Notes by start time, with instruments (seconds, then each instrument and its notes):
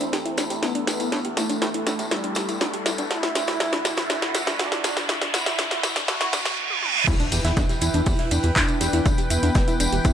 Already playing: synth drone E2, analog synth pad A3 E4 A4, analog polysynth C4, riser
0.00 analog synth bass A1, synth arpeggio sound D4, closed hi-hat, tambourine
0.13 analog synth bass A1, synth arpeggio sound G4, snare, closed hi-hat, tambourine
0.26 synth arpeggio sound E4, closed hi-hat
0.37 analog synth bass A1, synth arpeggio sound D4, snare, closed hi-hat, tambourine
0.50 analog synth bass A1, synth arpeggio sound G4, closed hi-hat, tambourine
0.63 analog synth bass A1, analog polysynth B3, synth arpeggio sound E4, snare, closed hi-hat, tambourine
0.75 synth arpeggio sound D4, closed hi-hat
0.87 analog synth bass A1, synth arpeggio sound G4, snare, closed hi-hat, tambourine
1.00 analog synth bass A1, synth arpeggio sound E4, closed hi-hat, tambourine
1.12 analog synth bass A2, synth arpeggio sound D4, snare, closed hi-hat, tambourine
1.25 synth arpeggio sound G4, closed hi-hat
1.37 analog synth bass A1, analog polysynth A3, synth arpeggio sound E4, snare, closed hi-hat, tambourine
1.50 analog synth bass A1, synth arpeggio sound D4, closed hi-hat, tambourine
1.62 analog synth bass A2, synth arpeggio sound G4, snare, closed hi-hat, tambourine
1.74 synth arpeggio sound E4, closed hi-hat
1.87 analog synth bass A2, synth arpeggio sound D4, snare, closed hi-hat, tambourine
1.99 analog synth bass A2, synth arpeggio sound G4, closed hi-hat, tambourine
2.11 analog synth bass A1, analog polysynth G3, synth arpeggio sound E4, snare, closed hi-hat, tambourine
2.24 synth arpeggio sound D4, closed hi-hat
2.35 synth arpeggio sound G4, snare, closed hi-hat, tambourine
2.49 analog synth bass A1, synth arpeggio sound E4, closed hi-hat, tambourine
2.61 analog synth bass B1, synth arpeggio sound D4, snare, closed hi-hat, tambourine
2.74 synth arpeggio sound G4, closed hi-hat
2.86 analog synth bass B1, synth arpeggio sound E4, snare, closed hi-hat, tambourine
2.98 analog synth bass B1, synth arpeggio sound D4, closed hi-hat, tambourine
3.11 analog synth bass D2, analog synth pad D3 E4 F#4, analog polysynth E4, synth arpeggio sound F#4, snare, closed hi-hat, tambourine
3.23 synth arpeggio sound E4, snare, closed hi-hat
3.35 analog synth bass D2, synth arpeggio sound D4, snare, closed hi-hat, tambourine
3.47 analog synth bass D2, synth arpeggio sound F#4, snare, closed hi-hat, tambourine
3.60 analog synth bass D2, synth arpeggio sound E4, snare, closed hi-hat, tambourine
3.73 synth arpeggio sound D4, snare, closed hi-hat
3.85 analog synth bass D2, synth arpeggio sound F#4, snare, closed hi-hat, tambourine
3.97 analog synth bass D2, synth arpeggio sound E4, snare, closed hi-hat, tambourine
4.10 analog synth bass D2, synth arpeggio sound D4, snare, closed hi-hat, tambourine
4.22 synth arpeggio sound F#4, snare, closed hi-hat
4.34 analog synth bass D2, synth arpeggio sound E4, snare, closed hi-hat, tambourine
4.47 analog synth bass D2, synth arpeggio sound D4, snare, closed hi-hat, tambourine
4.59 analog synth bass D2, analog polysynth D4, synth arpeggio sound F#4, snare, closed hi-hat, tambourine
4.72 synth arpeggio sound E4, snare, closed hi-hat
4.84 analog synth bass D2, synth arpeggio sound D4, snare, closed hi-hat, tambourine
4.97 analog synth bass D2, synth arpeggio sound F#4, snare, closed hi-hat, tambourine
5.09 synth arpeggio sound E4, snare, closed hi-hat, tambourine
5.21 synth arpeggio sound D4, snare, closed hi-hat
5.34 analog synth bass D2, analog polysynth E4, synth arpeggio sound F#4, snare, closed hi-hat, tambourine
5.46 analog synth bass D2, synth arpeggio sound E4, snare, closed hi-hat, tambourine
5.59 synth arpeggio sound D4, snare, closed hi-hat, tambourine
5.71 synth arpeggio sound F#4, snare, closed hi-hat
5.83 synth arpeggio sound E4, snare, closed hi-hat, tambourine
5.96 synth arpeggio sound D4, snare, closed hi-hat, tambourine
6.08 analog synth bass D2, synth arpeggio sound F#4, analog polysynth F#4, snare, closed hi-hat, tambourine, reverse cymbal
6.21 synth arpeggio sound E4, snare, closed hi-hat
6.33 analog synth bass D2, synth arpeggio sound D4, snare, closed hi-hat, tambourine
6.45 synth arpeggio sound F#4, snare, closed hi-hat, tambourine
6.70 high tom
6.83 mid tom
6.95 mid tom
7.07 analog synth bass E2, analog synth pad E3 E4 B4 G5, analog polysynth E4, synth arpeggio sound E4, kick, closed hi-hat, crash, tambourine, impact, shaker
7.20 synth arpeggio sound D4, closed hi-hat, tambourine
7.32 analog synth bass E2, synth arpeggio sound G4, closed hi-hat, tambourine, shaker
7.45 analog synth bass E2, synth arpeggio sound E4, snare, closed hi-hat, tambourine
7.57 analog synth bass E2, synth arpeggio sound D4, kick, snare, closed hi-hat, tambourine, shaker
7.69 synth arpeggio sound G4, snare, closed hi-hat, tambourine
7.81 analog synth bass E2, synth arpeggio sound E4, closed hi-hat, tambourine, shaker
7.94 analog synth bass E2, synth arpeggio sound D4, closed hi-hat, tambourine
8.06 analog synth bass E2, synth arpeggio sound G4, kick, closed hi-hat, open hi-hat, tambourine
8.19 synth arpeggio sound E4, snare, closed hi-hat
8.31 analog synth bass E2, synth arpeggio sound D4, closed hi-hat, tambourine, shaker
8.43 analog synth bass E2, synth arpeggio sound G4, closed hi-hat, tambourine
8.56 analog synth bass E2, analog polysynth D4, synth arpeggio sound E4, kick, snare, clap, closed hi-hat, tambourine, shaker
8.67 synth arpeggio sound D4, closed hi-hat, tambourine
8.81 analog synth bass E2, synth arpeggio sound G4, snare, closed hi-hat, tambourine, shaker
8.93 analog synth bass E2, synth arpeggio sound E4, closed hi-hat, tambourine
9.06 analog synth bass E1, synth arpeggio sound D4, kick, closed hi-hat, tambourine, shaker
9.18 synth arpeggio sound G4, closed hi-hat, tambourine
9.30 analog synth bass E2, analog polysynth B3, synth arpeggio sound E4, closed hi-hat, tambourine, shaker
9.43 analog synth bass E2, synth arpeggio sound D4, closed hi-hat, tambourine
9.55 analog synth bass E1, synth arpeggio sound G4, kick, snare, closed hi-hat, tambourine, shaker
9.68 synth arpeggio sound E4, closed hi-hat, tambourine
9.80 analog synth bass E1, synth arpeggio sound D4, closed hi-hat, tambourine, shaker
9.92 analog synth bass E1, synth arpeggio sound G4, closed hi-hat, tambourine
10.04 analog synth bass E2, analog polysynth B3, synth arpeggio sound E4, kick, closed hi-hat, tambourine, shaker